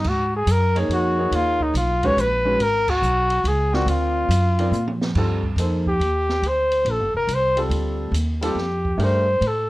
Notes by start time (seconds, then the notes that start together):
0.04 G#2 F#4, kick, crash
0.36 G#4
0.47 F#2, hi-hat pedal, ride
0.52 A#4
0.75 A#3 D#4 G#4 C#5, ride
0.89 F2, ride
0.93 F#4
1.18 A#3 D#4 G#4 C#5
1.31 D#2 F4, ride
1.61 D#4, kick
1.74 B1 F4, hi-hat pedal, ride
2.03 G#3 C#4 F#4 B4 C#5, kick, ride
2.16 A#1 B4, hi-hat pedal, ride
2.45 G#3 C#4 F#4 B4
2.59 G#1 A#4, ride
2.88 F#4, kick, crash
3.02 B1, hi-hat pedal
3.30 ride
3.44 C#2 G#4, ride
3.73 C4 F4 F#4 A#4 D5, snare
3.86 D2 F4, ride
4.29 F#2, hi-hat pedal, ride
4.59 C4 F4 A#4 D5, ride
4.71 A#2, hi-hat pedal
4.87 high tom
5.01 snare
5.15 G2 G3 C4 F4 A4, kick, crash
5.43 kick
5.56 F2 A#3 D#4 A4, hi-hat pedal, ride
5.60 C5
5.86 G4, kick
6.00 D#2, ride
6.29 snare
6.42 D2, ride
6.48 C5
6.72 ride
6.85 A#1, ride
6.91 A4
7.00 G1
7.14 F1 A#4
7.27 C2, hi-hat pedal, ride
7.34 C5
7.56 G3 C4 F4 A4, ride
7.70 D2, ride
8.12 D#2, hi-hat pedal, ride
8.41 G3 C4 F4 G4 A4, ride
8.55 F2, snare
8.85 kick
8.98 G2 A3 D4 G4 A#4, ride
9.04 C5
9.41 A2, ride
9.47 A4